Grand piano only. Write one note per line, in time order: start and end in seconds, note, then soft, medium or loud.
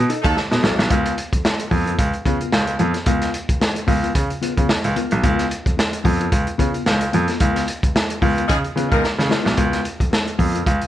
0.25 0.33 D#2 medium
0.51 0.60 B2 medium
0.63 0.74 B1 medium
0.79 0.87 B1 medium
0.91 1.10 C#2 loud
1.33 1.37 F2 soft
1.71 1.91 F2 medium
1.99 2.10 C#2 medium
2.25 2.37 C#3 medium
2.53 2.73 C#2 medium
2.79 2.91 F2 medium
3.06 3.27 C#2 medium
3.49 3.54 C#2 soft
3.88 4.08 C#2 medium
4.15 4.26 C#3 medium
4.42 4.48 C#3 soft
4.57 4.66 C#3 medium
4.69 4.75 C#2 soft
4.84 4.93 C#2 medium
5.12 5.21 B1 loud
5.24 5.44 C#2 loud
5.66 5.71 F2 soft
6.05 6.25 F2 medium
6.32 6.43 C#2 medium
6.59 6.70 C#3 medium
6.86 7.06 C#2 medium
7.14 7.25 F2 medium
7.41 7.61 C#2 loud
7.83 7.88 C#2 soft
8.22 8.42 C#2 loud
8.50 8.61 C#3 loud
8.76 8.87 C#3 medium
8.92 9.00 C#2 medium
9.18 9.27 C#3 loud
9.46 9.54 B1 medium
9.58 9.78 C#2 loud
10.00 10.05 F2 soft
10.39 10.59 F2 medium
10.67 10.78 C#2 medium